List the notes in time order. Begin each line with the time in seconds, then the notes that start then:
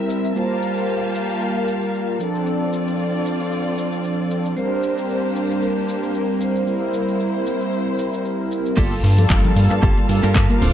Already playing: G3 C4 E4 A#4 E5
0.10 shaker
0.24 shaker
0.35 G3 A#3 F4 G4 A#4 C5 F5 A5, shaker
0.62 shaker
0.77 shaker
0.89 shaker
1.15 shaker
1.30 shaker
1.41 A#4, shaker
1.68 shaker
1.83 shaker
1.94 shaker
2.19 F3 C4 D4 F4 A4 D5, shaker
2.35 shaker
2.46 D5, shaker
2.73 shaker
2.88 shaker
2.99 shaker
3.26 shaker
3.40 shaker
3.52 shaker
3.78 shaker
3.93 shaker
4.04 shaker
4.31 shaker
4.45 shaker
4.55 G3 A#3 C4 D4 G4 A#4 C5, shaker
4.83 shaker
4.98 shaker
5.09 shaker
5.36 shaker
5.50 shaker
5.62 A#4, shaker
5.89 shaker
6.03 shaker
6.15 A#4, shaker
6.41 C5, shaker
6.56 shaker
6.66 G3 C4 E4 A#4 C5, shaker
6.94 shaker
7.08 shaker
7.20 shaker
7.46 shaker
7.61 shaker
7.73 shaker
7.99 shaker
8.14 shaker
8.25 shaker
8.51 shaker
8.66 shaker
8.77 G1 G3 A#3 F4 G4 A4 F5 A5, kick, closed hi-hat, crash, cabasa, shaker
8.91 cabasa
9.04 G2, open hi-hat, shaker
9.18 G3 A#3 F4 A4, closed hi-hat, low conga, cabasa, shaker
9.29 G1, kick, clap, closed hi-hat, cabasa, shaker
9.45 closed hi-hat, low conga, cabasa
9.56 G2 G3 A#3 F4 A4, open hi-hat, high conga, shaker
9.70 G2, muted clean electric guitar stroke, closed hi-hat, cabasa, shaker
9.82 G1 A#3 F4 G4 A4, kick, closed hi-hat, cabasa, shaker
9.97 G3 A#3 F4 A4, closed hi-hat, cabasa
10.08 G2 G3 A#3 F4 A4, muted clean electric guitar stroke, open hi-hat, shaker
10.23 G2 A#3 F4 G4 A#4, closed hi-hat, cabasa, shaker
10.35 G1, kick, clap, closed hi-hat, cabasa, shaker
10.50 G3 A#3 F4 A#4, closed hi-hat, high conga, cabasa
10.61 D1 C4 D4 F4 A4 C5 D6, open hi-hat, shaker